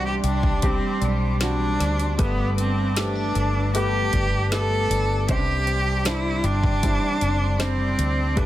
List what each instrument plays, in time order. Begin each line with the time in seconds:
Already playing: fingered electric bass C2, felt piano C3 G3 D4 G4 C5, analog synth pad G3 D5 C6 D6, clean electric guitar C4 D4
0.06 cello G4
0.24 fingered electric bass C2, cello D4, clean electric guitar G4, closed hi-hat
0.43 kick
0.62 felt piano G3 D4 G4, clean electric guitar C4, cello C4, kick, closed hi-hat
1.01 fingered electric bass B1, cello G3, clean electric guitar D4, closed hi-hat
1.40 felt piano G3 D4 F#4, clean electric guitar C4, cello D4, snare, closed hi-hat
1.80 fingered electric bass D2, clean electric guitar D4, snare, closed hi-hat
2.00 closed hi-hat
2.18 fingered electric bass G1, felt piano G2 A3 G4 B4, clean electric guitar G3, cello B3, analog synth pad B4 A5, kick, closed hi-hat
2.57 clean electric guitar B3, cello C4, closed hi-hat
2.96 felt piano A3 G4 A4, clean electric guitar C4, cello D4, snare, closed hi-hat
3.15 clean electric guitar D4
3.35 fingered electric bass G1, clean electric guitar A4, closed hi-hat
3.74 felt piano A3 G4 B4, clean electric guitar B3, cello G4, closed hi-hat
4.13 fingered electric bass G1, clean electric guitar D4, kick, closed hi-hat
4.51 felt piano A3 G4 B4, clean electric guitar B3, cello A4, snare, closed hi-hat
4.90 fingered electric bass G1, clean electric guitar D4, closed hi-hat
5.28 fingered electric bass C2, clean electric guitar C3, felt piano C3 G3 C#4 C5, cello G4, analog synth pad D5 C6, kick, closed hi-hat
5.36 felt piano D4
5.67 clean electric guitar C4, closed hi-hat
6.05 felt piano G3 D4 C5, clean electric guitar D4, cello E4, snare, closed hi-hat
6.44 fingered electric bass G1, cello D4, clean electric guitar G4, closed hi-hat
6.64 kick
6.83 felt piano G3 D4 E4, clean electric guitar C4, kick, closed hi-hat
7.21 fingered electric bass F#1, clean electric guitar D4, closed hi-hat
7.59 felt piano G3 D4 C5, clean electric guitar C4, cello C4, snare, closed hi-hat
7.98 fingered electric bass D2, clean electric guitar D4, closed hi-hat
8.35 fingered electric bass G1, felt piano G2 A3 G4 B4, clean electric guitar G3, cello D4, analog synth pad A4 G5 B5, kick, closed hi-hat